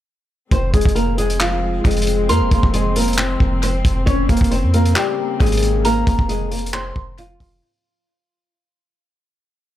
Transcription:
0.51 F1 F3 G#3 C4 C5, kick, closed hi-hat
0.74 F1 G#3 G#4, kick, closed hi-hat
0.81 closed hi-hat
0.85 F1, kick, closed hi-hat
0.95 A#3 A#4, closed hi-hat
1.18 G#3 G#4, closed hi-hat
1.30 closed hi-hat
1.40 F3 F4, clap, closed hi-hat
1.84 F1 G#3 G#4, kick, closed hi-hat
1.91 closed hi-hat
1.97 closed hi-hat
2.02 closed hi-hat
2.07 closed hi-hat
2.29 F2 A#3 A#4 C6, closed hi-hat
2.41 F1
2.51 F1 A#3 A#4, kick, closed hi-hat
2.63 F1, kick
2.74 G#3 G#4, closed hi-hat
2.96 A#3 A#4, closed hi-hat, open hi-hat
3.02 closed hi-hat
3.08 closed hi-hat
3.13 closed hi-hat
3.18 C4 C5, clap, closed hi-hat
3.40 F1, kick
3.63 C4 C5, closed hi-hat
3.85 F1, kick, closed hi-hat
4.06 F1 C#3 A#3 C#4 C#5, kick, closed hi-hat
4.29 F1 A#3 A#4, kick, closed hi-hat
4.37 closed hi-hat
4.41 F1, kick, closed hi-hat
4.51 C4 C5, closed hi-hat
4.63 F2
4.74 A#3 A#4, closed hi-hat
4.86 closed hi-hat
4.96 G3 G4, clap, closed hi-hat
5.40 G#1 G#3 G#4, kick, closed hi-hat
5.46 closed hi-hat
5.52 closed hi-hat
5.57 closed hi-hat
5.63 closed hi-hat
5.85 A#3 A#4 A#5, closed hi-hat
6.07 F1 A#3 A#4, kick, closed hi-hat
6.19 F1, kick
6.29 G#3 G#4, closed hi-hat
6.51 A#3 A#4, closed hi-hat, open hi-hat
6.59 closed hi-hat
6.66 closed hi-hat
6.73 C4 C5 C6, clap
6.96 F1, kick
7.18 F3 F4, closed hi-hat
7.40 F1, kick, open hi-hat

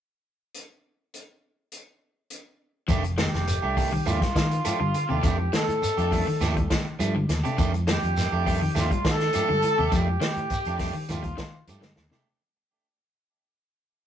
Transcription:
0.54 closed hi-hat
1.14 closed hi-hat
1.72 closed hi-hat
2.30 closed hi-hat
2.88 F1 D#3 F3 A3 D4 G4, kick, closed hi-hat, shekere
3.04 muted clean electric guitar stroke, closed hi-hat
3.18 D#3 G4, muted clean electric guitar stroke, snare, closed hi-hat, high conga, shekere
3.34 F1, snare, closed hi-hat
3.47 muted clean electric guitar stroke, closed hi-hat, shekere
3.62 C2 A3 D4 G4
3.77 D#3 G3 A3 D4 G4, kick, open hi-hat, shekere
3.92 D#3, muted clean electric guitar stroke
4.06 D#2 F3 A3 D4 F4 G4, closed hi-hat, high conga, shekere
4.21 G3, muted clean electric guitar stroke, kick, snare, closed hi-hat, high conga
4.35 D#3, kick, snare, closed hi-hat, high conga, shekere
4.51 muted clean electric guitar stroke, closed hi-hat
4.64 F3 A3 D4 G4, closed hi-hat, high conga, shekere
4.80 G2 D3, muted clean electric guitar stroke
4.94 muted clean electric guitar stroke, closed hi-hat, shekere
5.09 D#2 C3 A3 D4 G4
5.23 F2 D#3 F3 A3 D4 G4, kick, closed hi-hat, shekere
5.38 muted clean electric guitar stroke, high conga
5.53 D#3 A4, muted clean electric guitar stroke, snare, closed hi-hat, high conga, shekere
5.68 A2, closed hi-hat
5.82 muted fingered electric bass stroke, muted clean electric guitar stroke, closed hi-hat, shekere
5.97 F2 A3 D4 G4, closed hi-hat
6.11 D#3 G3 A3 D4, kick, open hi-hat, shekere
6.27 D#3, muted clean electric guitar stroke
6.40 D#2 F3 A3 D4 G4, snare, closed hi-hat, high conga, shekere
6.56 G3, muted clean electric guitar stroke, kick, closed hi-hat, high conga
6.70 D#3, kick, snare, closed hi-hat, high conga, shekere
6.85 muted clean electric guitar stroke
6.99 G2 F3 A3 D4, muted clean electric guitar stroke, closed hi-hat, high conga, shekere
7.15 D3, muted clean electric guitar stroke, high conga
7.29 D#2, muted clean electric guitar stroke, snare, closed hi-hat, high conga, shekere
7.44 C3 A3 D4 G4, closed hi-hat
7.58 F2 D#3 F3 A3 D4 G4, kick, closed hi-hat, shekere
7.73 muted clean electric guitar stroke, closed hi-hat, high conga
7.87 D#3 G4, muted clean electric guitar stroke, snare, closed hi-hat, high conga, shekere
8.03 F2, closed hi-hat
8.17 muted clean electric guitar stroke, snare, closed hi-hat, shekere
8.32 F2 A3 D4 G4
8.46 D#3 G3 A3 D4 G4, kick, open hi-hat, shekere
8.60 D#3, muted clean electric guitar stroke
8.75 D#2 F3 A3 D4 F4 G4, snare, closed hi-hat, high conga, shekere
8.91 G3, muted clean electric guitar stroke, kick, closed hi-hat, high conga
9.04 D#3, kick, snare, closed hi-hat, high conga, shekere
9.10 A4
9.19 muted clean electric guitar stroke, snare, closed hi-hat
9.32 F3 A3 D4 G4, closed hi-hat, high conga, shekere
9.49 G2 D3, muted clean electric guitar stroke, high conga
9.62 muted clean electric guitar stroke, closed hi-hat, high conga, shekere
9.78 D#2 C3 A3 G4
9.92 F2 D#3 F3 A3 D4 G4, kick, closed hi-hat, shekere
10.08 muted clean electric guitar stroke, high conga
10.20 D#3, muted clean electric guitar stroke, snare, closed hi-hat, high conga, shekere
10.36 A2, closed hi-hat
10.50 muted fingered electric bass stroke, muted clean electric guitar stroke, kick, closed hi-hat, shekere
10.65 F2 A3 D4 G4, closed hi-hat
10.79 D#3 G3 A3 D4 G4, kick, snare, open hi-hat, shekere
10.94 D#3, muted clean electric guitar stroke
11.08 D#2 F3 A3 D4 F4 G4, closed hi-hat, high conga, shekere
11.23 G3, muted clean electric guitar stroke, kick, closed hi-hat
11.37 D#3, kick, snare, closed hi-hat, high conga, shekere
11.55 muted clean electric guitar stroke
11.67 G2 F3 A3 D4 G4, closed hi-hat, high conga, shekere
11.81 D3, muted clean electric guitar stroke, snare, high conga
11.96 D#2, muted clean electric guitar stroke, snare, shekere
12.10 C3 A3 D4 G4, snare

